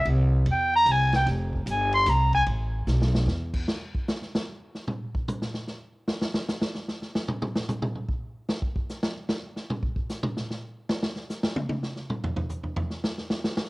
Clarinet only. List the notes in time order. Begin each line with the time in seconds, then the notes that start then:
0.52 G5
0.76 A#5
0.92 G#5
1.16 G5
1.71 G#5
1.94 C6
2.10 A#5
2.35 G#5